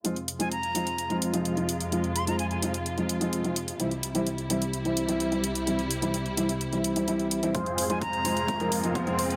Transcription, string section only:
X:1
M:4/4
L:1/8
Q:1/4=128
K:Fm
V:1 name="String section" clef=bass
[F,,C,A,F]8- | [F,,C,A,F]8 | [C,,C,G,=E]8- | [C,,C,G,=E]8 |
[F,,C,A,F]8 |]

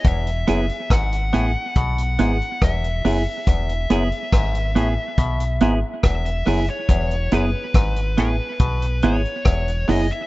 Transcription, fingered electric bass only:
X:1
M:4/4
L:1/16
Q:1/4=70
K:E
V:1 name="Fingered electric bass" clef=bass
E,,,2 F,,, z G,,,2 A,,, z B,,,2 G,,, z E,,,2 F,,, z | E,,,2 F,,, z G,,,2 A,,, z B,,,2 G,,, z E,,,2 F,,, z | E,,,2 F,,, z G,,,2 A,,, z B,,,2 G,,, z E,,,2 F,,, z |]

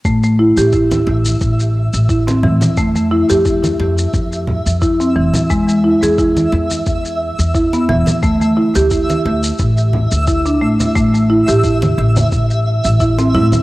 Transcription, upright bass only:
X:1
M:4/4
L:1/16
Q:"Swing 16ths" 1/4=88
K:Ddor
V:1 name="Upright bass" clef=bass
A,,,2 z A,,,2 z A,,, z A,,,2 z A,,,3 A,, z | F,,2 z F,,2 z F,, z F,,2 z F,,3 F,,, z | E,,2 z E,,2 z E,, z E,,2 z E,,3 E,,, z | D,,2 z D,,2 z D,, z A,,,2 z D,,3 A,,, z |
A,,,2 z A,,,2 z A,,, z A,,,2 z A,,,3 A,, z |]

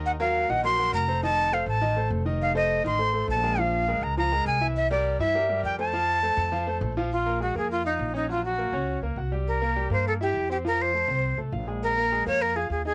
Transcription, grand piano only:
X:1
M:4/4
L:1/8
Q:1/4=204
K:Fphr
V:1 name="Grand piano"
[E,Ee] [G,GB]2 [E,Ee] [G,GB] [G,GB]2 [=A,=Ac] | [E,Ee]2 [=A,=Ac]2 [E,Ee] [A,Ac]2 [E,Ee]- | [E,Ee] [=A,=Ac]2 [E,Ee] [A,Ac] [A,Ac]2 [_A,_AB] | [F,Ff]2 [A,AB]2 [F,Ff] [A,AB]2 [=E,=E=e]- |
[=E,=E=e] [=G,=GB]2 [E,Ee] [G,GB] [G,GB]2 [=A,=Ac] | [F,Ff]2 [=A,=Ac]2 [F,Ff] [A,Ac]2 [F,Ff] | z [B,B] [A,A] [B,B]2 [Ff]2 [Dd] | [G,G]2 [B,B] [Dd]2 [B,B] [Gg] [=G,=G]- |
[=G,=G] [B,B] [G,G] [B,B]2 [=E=e]2 [Cc] | [F,F]2 [=A,=A] [Cc]2 [A,A] [Ff] [_A,_A]- | [A,A] [B,B] [A,A] [B,B]2 [Ff]2 [Ee] |]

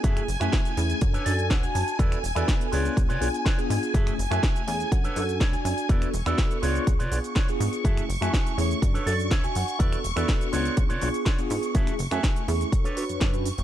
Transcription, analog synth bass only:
X:1
M:4/4
L:1/16
Q:1/4=123
K:F#m
V:1 name="Analog synth bass" clef=bass
F,, z F,,, F,, z2 E,, z F,, z F,,2 C,, z F,, z | E,, z E,,, E,, z2 C,, z C,, C, B,,, z3 G,, z | F,, z F,,, F,, z2 E,, z F,, z F,,2 C,, z F,, z | E,, z E,,, E,, z2 C,, z C,, C, B,,, z3 G,, z |
F,, z F,,, F,, z2 E,, z F,, z F,,2 C,, z F,, z | E,, z E,,, E,, z2 C,, z C,, C, B,,, z3 G,, z | F,, z F,,, F,, z2 E,, z4 F,, F,,2 z F,,, |]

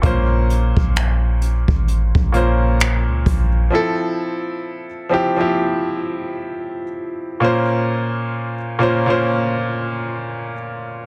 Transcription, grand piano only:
X:1
M:4/4
L:1/16
Q:"Swing 16ths" 1/4=65
K:F
V:1 name="Grand piano"
[B,,B,_Dc]6 z4 [B,,B,Dc]4- [B,,B,Dc] z | [F,CEA]4- [F,CEA] z [F,CEG] [F,CEG]6 z3 | [B,,B,_Dc]4- [B,,B,Dc] z [B,,B,Dc] [B,,B,Dc]6 z3 |]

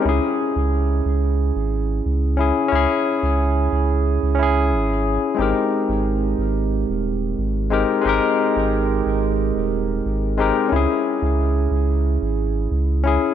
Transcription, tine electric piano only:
X:1
M:4/4
L:1/16
Q:1/4=90
K:Dblyd
V:1 name="Tine electric piano"
[D_FA]12- [DFA]2 [DFA] z | [D_FA]8- [DFA]2 [DFA]6 | [A,CEGB]12- [A,CEGB]2 [A,CEGB] z | [A,CEGB]12- [A,CEGB]2 [A,CEGB] z |
[D_FA]12- [DFA]2 [DFA] z |]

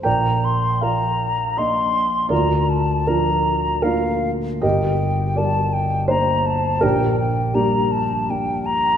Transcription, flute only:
X:1
M:3/4
L:1/8
Q:1/4=81
K:Bb
V:1 name="Flute"
b c' b2 c'2 | b a b2 f2 | g2 a g b a | g g b a g b |]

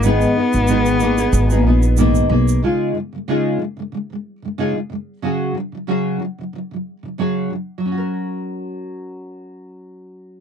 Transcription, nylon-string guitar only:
X:1
M:4/4
L:1/16
Q:"Swing 16ths" 1/4=92
K:F#
V:1 name="Nylon-string guitar" clef=bass
[G,,D,B,DG]2 [B,DG]2 [G,,D,B,DG]2 [A,B,DG] [B,DG]2 [A,B,DG] [B,DG]2 [G,,D,A,B,DG]2 [A,B,DG]2 | [C,G,DEG]2 [C,G,] [C,G,] [C,G,DEG]2 [C,G,] [C,G,] [C,G,] [C,G,]2 [C,G,] [C,G,DEG] [C,G,] [C,G,]2 | [C,F,CFG]2 [C,F,] [C,F,] [C,F,CFG]2 [C,F,] [C,F,] [C,F,] [C,F,]2 [C,F,] [C,F,CFG]2 [C,F,]2 | [F,CFA]16 |]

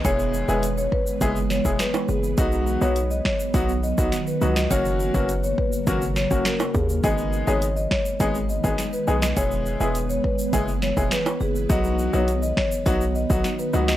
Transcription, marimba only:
X:1
M:4/4
L:1/16
Q:1/4=103
K:Elyd
V:1 name="Marimba"
c z2 B z c B z3 c z B z G z | d z2 c z d c z3 d z2 B z d | c z2 B z c B z3 c z A z G z | d z2 c z d c z3 d z2 B z d |
c z2 B z c B z3 c z B z G z | d z2 c z d c z3 d z2 B z d |]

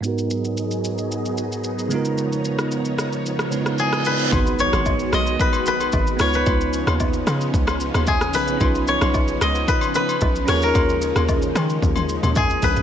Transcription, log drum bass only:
X:1
M:4/4
L:1/16
Q:1/4=112
K:G#dor
V:1 name="Log drum bass" clef=bass
z16 | z16 | G,,,3 G,,,3 B,,,2 z4 G,,,2 C,,2 | C,,3 D,,3 C,2 C,,3 D,,3 B,,,2 |
B,,,3 B,,,3 C,,2 z4 B,,,2 D,,2 | D,,3 D,,3 D,2 D,,3 D,,3 A,,,2 |]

